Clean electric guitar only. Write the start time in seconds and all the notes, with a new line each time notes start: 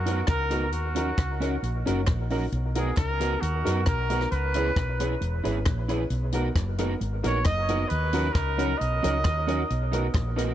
0.06 D#4 F#4 A#4
0.29 muted clean electric guitar stroke
0.50 D#4 F#4 A#4
0.95 C#4 F#4 A#4
1.40 C#4 F#4 A#4
1.63 muted clean electric guitar stroke
1.86 C#4 F#4 A#4
2.08 muted clean electric guitar stroke
2.31 C#4 F#4 A#4
2.76 D#4 F#4 A#4
3.20 D#4 F#4 A#4
3.41 muted clean electric guitar stroke
3.66 D#4 F#4 A#4
4.10 D#4 F#4 A#4
4.55 E4 G#4 B4
5.00 E4 G#4 B4
5.21 muted clean electric guitar stroke
5.44 E4 G#4 B4
5.65 muted clean electric guitar stroke
5.88 E4 G#4 B4
6.33 D#4 F#4 A#4
6.79 D#4 F#4 A#4
7.00 muted clean electric guitar stroke
7.24 D#4 F#4 A#4
7.45 muted clean electric guitar stroke
7.69 D#4 F#4 A#4
8.13 C#4 F#4 A#4
8.58 C#4 F#4 A#4
8.80 muted clean electric guitar stroke
9.03 C#4 F#4 A#4
9.24 muted clean electric guitar stroke
9.47 C#4 F#4 A#4
9.92 D#4 F#4 A#4
10.36 D#4 F#4 A#4